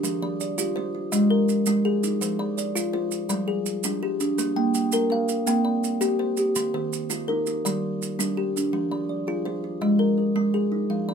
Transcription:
Already playing: D4 G4
0.03 F3 A#4, maracas
0.22 F3 D5
0.40 D5, maracas
0.58 F4 G4, maracas
0.76 F4 C5
0.95 F4
1.12 F3 G#3 D#5, maracas
1.30 A#4
1.49 maracas
1.66 G#3 D#4, maracas
1.85 G#4
2.03 D#4, maracas
2.21 F3 C5, maracas
2.39 F3 D5
2.58 D5, maracas
2.75 F4, maracas
2.93 F4 C5
3.11 maracas
3.29 F3 G3 D5, maracas
3.48 G#4
3.66 maracas
3.83 G3 D4, maracas
4.03 G4
4.20 D4, maracas
4.38 A#3 A#4, maracas
4.56 A#3 G5
4.74 G5, maracas
4.92 A#4, maracas
5.10 A#4 F5
5.28 A#4, maracas
5.46 A#3 C4 G5, maracas
5.65 D5
5.84 maracas
6.01 C4 G4, maracas
6.19 C5
6.37 G4, maracas
6.56 D#3, maracas
6.74 D#3 C5
6.93 maracas
7.10 D#4 F4, maracas
7.28 D#4 A#4
7.47 D#4, maracas
7.65 D#3 G3 D5, maracas
8.02 maracas
8.19 G3 D4, maracas
8.37 G4
8.56 D4, maracas
8.73 F3 A#4
8.91 F3 D5
9.09 D5
9.27 F4 G#4
9.45 F4 C5
9.64 F4
9.81 F3 G#3 D#5
9.99 A#4
10.18 A#4
10.36 G#3 D#4
10.54 G#4
10.72 D#4
10.90 F3 F5
11.09 F3 D5

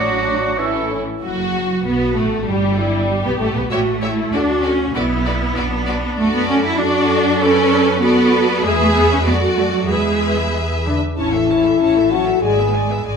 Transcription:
Already playing: A1 A2 F#3 D4 F#4 D6
0.26 F#3 D4
0.58 E3 C#4 E4 A4 C#6
0.91 E3 C#4
1.22 F#1 F#3 F#4
1.84 B1 B3 F#4
2.15 A1 A3
2.46 G1 G3 G4
2.78 E4
3.09 G4
3.24 B1 B3
3.40 A1 A3
3.56 B1 B3
3.71 A1 A3 F#4 G4 C#5 E5
4.02 E4 G4 C#5 E5
4.33 D2 D4 F#4 A4 D5
4.64 C#4 F#4 A4 D5
4.95 B1 B3 E4 F#4 B4 D5
5.26 F#4 B4 D5
5.56 B1 D4 F#4 B4 D5
5.87 F#4 B4 D5
6.17 F#2 A3 F#4 A4 D5
6.34 B3
6.49 C#4
6.64 E4
6.79 D4 F#4 A4 D5
7.40 C#4 A4 B4 D5
8.02 B3 F#4 A4 B4 D5
8.64 E2 G#3 G#4 B4 E5
8.80 A3
8.95 B3
9.11 C#4
9.25 F#2 B3 F#4 A4 D5
9.58 A3
9.75 F#3
9.90 E2 G#3 G#4 B4 E5
10.86 D3 D4
11.17 A1 E3 C#4 E4 C#5 A5
11.33 A3 A4 E5
11.49 C#4 C#5 A5
11.65 A3 A4 E5
11.80 A1 C#4 C#5 A5
11.96 A3 A4 E5
12.11 F#3 C#4 F#4 C#5 A5
12.27 A3 A4 E5
12.42 G#1 G#3 G#4 D5 G#5
12.58 B3 B4 E5
12.73 G#3 D5 G#5
12.89 B3 B4 E5
13.04 G#1 G#3 D5 G#5

